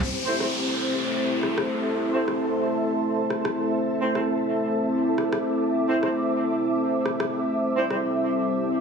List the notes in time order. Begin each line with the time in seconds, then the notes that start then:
Already playing: C4 G4 C5
0.02 A3 C4 E4 A4 C5, downlifter
0.14 E5
0.26 A3 C4 E4 C5
0.40 A3 C4 E4 C5, cross-stick
0.50 A5
0.93 C6
1.43 cross-stick
1.58 cross-stick
2.13 A3 C4 E4 C5
2.28 cross-stick
3.30 cross-stick
3.45 cross-stick
4.01 A3 C4 E4 C5
4.15 A3 C4 E4 C5, cross-stick
4.30 D6
5.18 cross-stick
5.33 cross-stick
5.88 A3 C4 E4 C5
6.03 A3 C4 E4 C5, cross-stick
7.06 cross-stick
7.20 cross-stick
7.52 G3 C4
7.74 G3 C4 E4 G4 C5
7.90 G3 C4 E4 C5, cross-stick
8.43 D5